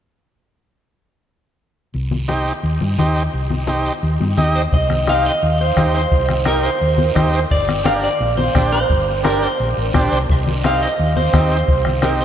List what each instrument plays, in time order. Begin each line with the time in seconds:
1.94 fingered electric bass C2, high conga, long guiro
2.11 high conga
2.28 transistor combo organ D#4 G4 C5, high conga, short guiro
2.46 short guiro
2.63 fingered electric bass D#2, high conga, long guiro
2.81 fingered electric bass G2, high conga
2.98 fingered electric bass D#2, transistor combo organ D#4 G4 C5, high conga, short guiro
3.16 short guiro
3.33 fingered electric bass C2, high conga, long guiro
3.51 high conga
3.67 transistor combo organ D#4 G4 C5, high conga, short guiro
3.85 short guiro
4.03 fingered electric bass D#2, high conga, long guiro
4.20 fingered electric bass G2, high conga
4.37 fingered electric bass D#2, transistor combo organ D#4 G4 D#5, high conga, short guiro
4.55 clean electric guitar C5, short guiro
4.72 fingered electric bass C2, clean electric guitar D#5, bombo low, high conga, long guiro
4.90 bombo rim, high conga
5.07 transistor combo organ D#4 G4 C5, clean electric guitar F5, bombo rim, high conga, short guiro
5.25 clean electric guitar D#5, short guiro
5.42 fingered electric bass D#2, high conga, long guiro
5.61 clean electric guitar C5
5.77 fingered electric bass D#2, transistor combo organ D#4 G4 C5, bombo low, bombo rim, high conga, short guiro
5.94 clean electric guitar C5, short guiro
6.11 fingered electric bass C2, bombo low, high conga, long guiro
6.29 bombo rim, high conga
6.45 transistor combo organ D#4 G4 A#4, clean electric guitar A#4, bombo rim, high conga, short guiro
6.63 clean electric guitar C5, short guiro
6.81 fingered electric bass D#2, high conga, long guiro
6.98 high conga
7.15 fingered electric bass D#2, transistor combo organ D#4 G4 C5, bombo low, bombo rim, high conga, short guiro
7.33 clean electric guitar C5, short guiro
7.51 fingered electric bass G1, clean electric guitar D5, bombo low, high conga, long guiro
7.68 bombo rim, high conga
7.84 transistor combo organ D4 G4 A#4, clean electric guitar F5, bombo rim, high conga, short guiro
8.04 clean electric guitar D5, short guiro
8.20 fingered electric bass A#1, high conga, long guiro
8.37 clean electric guitar C5, high conga
8.54 fingered electric bass A#1, transistor combo organ D4 G4 C5, bombo low, bombo rim, high conga, short guiro
8.72 clean electric guitar C5, short guiro
8.90 fingered electric bass G1, bombo low, high conga, long guiro
9.23 transistor combo organ D4 G4 A#4, clean electric guitar A#4, bombo rim, high conga, short guiro
9.43 clean electric guitar C5, short guiro
9.59 fingered electric bass A#1, high conga, long guiro
9.77 fingered electric bass A1
9.94 fingered electric bass A#1, transistor combo organ D4 G4 C5, bombo low, bombo rim, high conga, short guiro
10.12 fingered electric bass C2, clean electric guitar C5, short guiro
10.29 fingered electric bass C2, clean electric guitar D#5, bombo low, high conga, long guiro
10.47 high conga
10.64 transistor combo organ C4 D#4 G4, clean electric guitar F5, bombo rim, high conga, short guiro
10.82 clean electric guitar D#5, short guiro
10.99 fingered electric bass D#2, high conga, long guiro
11.16 clean electric guitar C5, high conga
11.33 fingered electric bass D#2, transistor combo organ C4 D#4 G4, bombo low, bombo rim, high conga, short guiro
11.52 clean electric guitar C5, short guiro
11.68 fingered electric bass C2, bombo low, high conga, long guiro
11.85 bombo rim, high conga
12.02 transistor combo organ C4 D#4 G4, clean electric guitar A#4, bombo rim, high conga, short guiro
12.21 clean electric guitar C5, short guiro